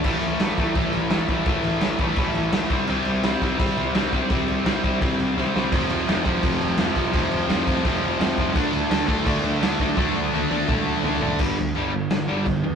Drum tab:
CC |xxxxxxxx|xxxxxxxx|xxxxxxxx|xxxxxx--|
SD |--o---o-|--o---o-|--o---o-|--o---oo|
T1 |--------|--------|--------|--------|
T2 |--------|--------|--------|--------|
FT |--------|--------|--------|--------|
BD |o--oo--o|o--oo--o|---oo--o|o--oo---|

CC |xxxxxxxx|xxxxxxxx|xxxxxxxx|--------|
SD |--o---o-|--o---o-|--o---o-|o-------|
T1 |--------|--------|--------|--oo----|
T2 |--------|--------|--------|----o---|
FT |--------|--------|--------|------oo|
BD |o--oo--o|o--oo--o|o--oo--o|o---o---|

CC |x-x-x-x-|
SD |----o---|
T1 |--------|
T2 |--------|
FT |--------|
BD |o-----o-|